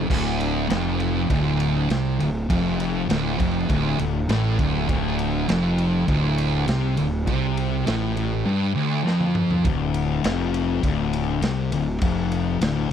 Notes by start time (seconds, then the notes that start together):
0.09 D1 D2, kick, crash
0.40 ride
0.69 F1 F2, snare, ride
1.00 ride
1.30 D1 D2, kick, ride
1.60 ride
1.90 C2 C3, snare, ride
2.19 D1 D2, ride
2.50 F1 F2, kick, ride
2.80 ride
3.09 D1 D2, snare, ride
3.39 F1 F2, kick, ride
3.69 D1 D2, kick, ride
3.99 D1 D2, ride
4.29 A1 A2, snare, ride
4.59 D1 D2, kick, ride
4.88 D1 D2, kick, ride
5.19 ride
5.48 F1 F2, snare, ride
5.78 ride
6.07 D1 D2, kick, ride
6.38 ride
6.67 C2 C3, snare, ride
6.97 D1 D2, ride
7.27 C2 C3, kick, ride
7.57 ride
7.86 A1 A2, snare, ride
8.17 ride
8.46 G2
8.75 D2
9.06 F2, snare
9.20 high tom
9.35 mid tom
9.50 floor tom
9.65 D1 D2, kick, ride
9.94 ride
10.24 F1 F2, snare, ride
10.54 ride
10.83 D1 D2, kick, ride
11.13 ride
11.42 C2 C3, snare, ride
11.71 D1 D2, ride
12.01 F1 F2, kick, ride
12.32 ride
12.61 D1 D2, snare, ride